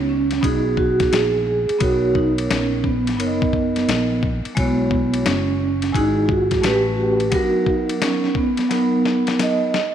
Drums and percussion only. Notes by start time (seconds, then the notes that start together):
0.31 snare, ride
0.43 kick, ride
0.77 kick
1.00 kick, snare, ride
1.13 snare, hi-hat pedal, ride
1.69 ride
1.80 kick, ride
2.15 kick
2.38 ride
2.51 snare, hi-hat pedal, ride
2.84 kick
3.07 snare, ride
3.20 ride
3.42 kick
3.53 kick
3.76 snare, ride
3.89 snare, hi-hat pedal, ride
4.23 kick
4.45 ride
4.57 kick, ride
4.91 kick
5.14 ride
5.26 snare, hi-hat pedal, ride
5.82 snare, ride
5.94 kick, ride
6.29 kick
6.51 kick, snare, ride
6.63 snare, hi-hat pedal, ride
7.20 ride
7.32 kick, ride
7.66 kick
7.89 ride
8.02 snare, hi-hat pedal, ride
8.24 snare
8.35 kick
8.57 snare, ride
8.71 snare, ride
9.06 snare
9.27 snare, ride
9.39 snare, hi-hat pedal, ride
9.74 snare